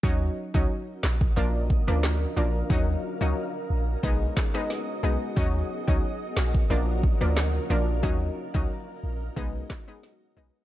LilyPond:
<<
  \new Staff \with { instrumentName = "Ambient pad" } { \time 4/4 \key ees \minor \tempo 4 = 90 << { r1 | ees''1~ | ees''2 r2 | ges'1 | } \\ { bes'1~ | bes'2 r2 | bes'1~ | bes'2 r2 | } >> }
  \new Staff \with { instrumentName = "Synth pluck" } { \time 4/4 \key ees \minor <ges des' ees'>8. <ges des' ees'>16 r4 <f bes d'>8. <f bes d'>8. <f bes d'>8 | <ges des' ees'>8. <ges des' ees'>16 r4 <gis b dis'>8. <gis b dis'>8. <gis b dis'>8 | <ges des' ees'>8. <ges des' ees'>16 r4 <f bes d'>8. <f bes d'>8. <f bes d'>8 | <ges des' ees'>8. <ges des' ees'>16 r4 <gis b dis'>8. <gis b dis'>8. <gis b dis'>8 | }
  \new Staff \with { instrumentName = "808-style bass" } { \clef bass \time 4/4 \key ees \minor ees,8 r16 des,16 r8 bes,,8 bes,,8. d,8. bes,,8 | ees,8 r16 des,16 r8 bes,,8 b,,8 r4 b,,16 r16 | ees,8 r16 des,16 r8 bes,,8 bes,,8. d,8. bes,,8 | ees,8 r16 des,16 r8 bes,,8 b,,8 r4 b,,16 r16 | }
  \new DrumStaff \with { instrumentName = "Drums" } \drummode { \time 4/4 bd8. bd16 r8 <hc sn>16 bd16 r8 bd16 ss16 <hc sn>4 | bd4 r4 bd8 <hc bd sn>16 ss16 sn4 | bd8. bd16 r8 <hc sn>16 bd16 r8 bd16 ss16 <hc sn>4 | bd8. bd16 r4 bd8 <hc bd sn>8 sn4 | }
>>